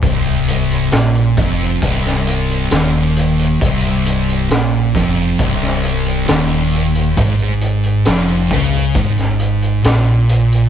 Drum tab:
HH |xxxxxxxxxxxxx-xx|xxxxx-x-x-xxx-xx|xxxxxxxxxxxxx-xx|
SD |----o----o--o---|----o-o--o--o---|----o-o--o--o---|
BD |o-----o-o-------|o-----o-o-------|o-----o-o-------|